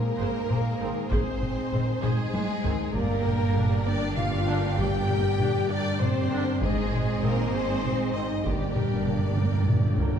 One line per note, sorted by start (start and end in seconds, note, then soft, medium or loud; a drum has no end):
0.00 2.95 G#3 loud
0.00 1.09 A#3 loud
0.00 2.95 D#4 medium
0.00 2.95 G#4 medium
0.00 1.10 A#4 loud
0.00 2.95 C5 medium
0.18 0.27 G#1 loud
0.18 0.26 G#2 medium
0.18 0.47 G#4 medium
0.18 0.47 C5 medium
0.49 0.58 G#1 medium
0.49 0.58 G#2 medium
0.49 0.57 G#4 medium
0.49 0.57 C5 medium
0.49 taiko mid medium
0.80 0.88 G#1 medium
0.80 0.88 G#2 medium
0.80 0.92 D#3 medium
0.80 0.92 C4 medium
0.80 0.88 G#4 medium
0.80 0.88 C5 medium
1.10 1.18 G#1 loud
1.10 1.19 G#2 loud
1.10 2.00 C4 loud
1.10 1.39 G#4 loud
1.10 2.01 C5 loud
1.10 1.39 C5 medium
1.10 2.01 C5 loud
1.10 taiko loud
1.43 taiko mid medium
1.72 1.80 G#1 medium
1.72 1.80 G#2 medium
1.72 1.84 D#3 medium
1.72 1.83 C4 medium
1.72 1.80 G#4 medium
1.72 1.80 C5 medium
1.72 taiko mid medium
2.02 2.11 G#1 loud
2.02 2.10 G#2 loud
2.02 2.92 G#3 loud
2.02 2.94 G#4 loud
2.02 2.31 G#4 loud
2.02 2.95 G#4 loud
2.02 2.31 C5 loud
2.02 taiko mid medium
2.33 2.42 G#1 medium
2.33 2.41 G#2 medium
2.33 2.42 G#4 medium
2.33 2.42 C5 medium
2.33 taiko high loud
2.64 2.72 G#1 medium
2.64 2.72 G#2 medium
2.64 2.75 D#3 loud
2.64 2.75 C4 loud
2.64 2.72 G#4 medium
2.64 2.72 C5 medium
2.64 taiko low loud
2.93 6.58 G1 loud
2.93 6.58 G2 loud
2.93 3.86 A#3 loud
2.93 6.62 A#3 loud
2.93 6.62 D4 loud
2.93 6.62 G4 loud
2.93 3.23 G4 medium
2.93 3.86 A#4 loud
2.93 3.23 D5 medium
2.93 6.62 D5 loud
2.93 taiko medium
3.25 3.56 A#4 medium
3.25 3.56 G5 medium
3.25 taiko mid medium
3.55 3.67 D3 medium
3.55 3.67 D4 medium
3.55 3.86 G4 medium
3.55 3.86 D5 medium
3.55 taiko mid medium
3.86 4.17 D4 loud
3.86 4.17 A#4 medium
3.86 4.17 D5 loud
3.86 4.17 G5 medium
4.16 4.78 F4 loud
4.16 4.45 G4 medium
4.16 4.45 D5 medium
4.16 4.76 F5 loud
4.16 4.78 F5 loud
4.16 taiko mid medium
4.47 4.58 D3 loud
4.47 4.58 D4 loud
4.47 4.78 A#4 medium
4.47 4.78 G5 medium
4.47 taiko rim soft
4.77 5.70 G4 loud
4.77 5.09 G4 medium
4.77 5.09 D5 medium
4.77 5.69 G5 loud
4.77 5.68 G5 loud
4.77 taiko loud
5.08 5.39 A#4 medium
5.08 5.39 G5 medium
5.08 taiko mid medium
5.39 5.51 D3 medium
5.39 5.50 D4 medium
5.39 5.68 G4 loud
5.39 5.68 D5 medium
5.39 taiko mid medium
5.69 6.01 D4 loud
5.69 6.00 A#4 medium
5.69 6.00 D5 loud
5.69 6.00 G5 medium
5.69 taiko rim soft
5.99 6.61 C4 loud
5.99 6.31 G4 medium
5.99 6.61 C5 loud
5.99 6.60 C5 loud
5.99 6.31 D5 medium
5.99 taiko mid medium
6.31 6.43 D3 loud
6.31 6.43 D4 loud
6.31 6.62 A#4 medium
6.31 6.62 G5 medium
6.31 taiko rim soft
6.61 8.42 G#1 loud
6.61 8.42 G#2 loud
6.61 7.23 G#3 loud
6.61 8.46 C4 loud
6.61 8.46 D#4 loud
6.61 7.22 G#4 loud
6.61 8.46 G#4 loud
6.61 6.90 C5 medium
6.61 8.46 C5 loud
6.61 6.90 D#5 medium
6.61 taiko loud
6.92 7.22 C5 medium
6.92 7.22 D#5 medium
6.92 taiko mid medium
7.22 7.35 D#3 medium
7.22 7.54 A#3 loud
7.22 7.34 C4 medium
7.22 7.53 A#4 loud
7.22 7.52 C5 medium
7.22 7.52 D#5 medium
7.22 taiko mid medium
7.53 8.15 C4 loud
7.53 8.15 C5 loud
7.53 7.83 C5 medium
7.53 8.13 C5 loud
7.53 7.83 D#5 medium
7.84 8.13 C5 medium
7.84 8.13 D#5 medium
7.84 taiko mid medium
8.14 8.26 D#3 medium
8.14 8.26 C4 loud
8.14 8.45 D#4 loud
8.14 8.46 C5 medium
8.14 8.45 D#5 medium
8.14 8.46 D#5 medium
8.14 8.46 D#5 loud
8.45 10.10 G1 loud
8.45 8.51 G2 soft
8.45 10.09 G2 medium
8.45 9.37 G3 loud
8.45 10.19 A#3 loud
8.45 10.19 D4 loud
8.45 9.37 G4 medium
8.45 8.74 G4 medium
8.45 10.19 A#4 medium
8.45 10.19 D5 loud
8.45 8.74 D5 medium
8.45 taiko loud
8.53 8.59 G2 soft
8.60 8.66 G2 medium
8.67 8.74 G2 soft
8.75 8.81 G2 soft
8.75 9.07 A#4 medium
8.75 9.07 G5 medium
8.75 taiko mid medium
8.82 8.89 G2 medium
8.90 8.96 G2 medium
8.97 9.04 G2 medium
9.05 9.11 G2 medium
9.05 9.18 D3 medium
9.05 9.18 A#3 medium
9.05 9.37 G4 medium
9.05 9.37 D5 medium
9.05 taiko mid medium
9.13 9.18 G2 medium
9.19 9.26 G2 medium
9.27 9.33 G2 medium
9.35 9.40 G2 medium
9.35 9.68 A#4 medium
9.35 9.68 G5 medium
9.35 taiko high medium
9.41 9.47 G2 medium
9.48 9.55 G2 medium
9.57 9.63 G2 medium
9.64 9.70 G2 loud
9.64 9.96 G4 medium
9.64 9.96 D5 medium
9.64 taiko mid loud
9.71 9.77 G2 medium
9.78 9.85 G2 medium
9.87 9.93 G2 loud
9.94 10.00 G2 loud
9.94 10.19 A#4 medium
9.94 10.19 G5 medium
9.94 taiko low loud
10.00 10.08 G2 loud
10.00 10.10 D3 medium
10.00 10.10 A#3 medium
10.09 10.16 G2 loud